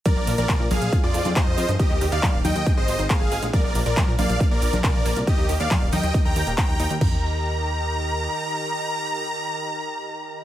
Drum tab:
CC |----------------|----------------|----------------|----------------|
HH |x-oxx-oxx-oxx-ox|x-oxx-oxx-oxx-ox|x-oxx-oxx-oxx-ox|x-oxx-oxx-oxx-ox|
SH |x-xxx-xxx-xxx-xx|x-xxx-xxx-xxx-xx|x-xxx-xxx-xxx-xx|x-xxx-xxx-xxx-xx|
CP |----x-------x---|----x-------x---|----x-------x---|----x-------x---|
FT |----------------|----------------|----------------|----------------|
CG |o---o-o----o----|----o-o---------|o---o-o----o----|----o-o---------|
BD |o---o---o---o---|o---o---o---o---|o---o---o---o---|o---o---o---o---|

CC |x---------------|----------------|
HH |----------------|----------------|
SH |----------------|----------------|
CP |----------------|----------------|
FT |o---------------|----------------|
CG |----------------|----------------|
BD |o---------------|----------------|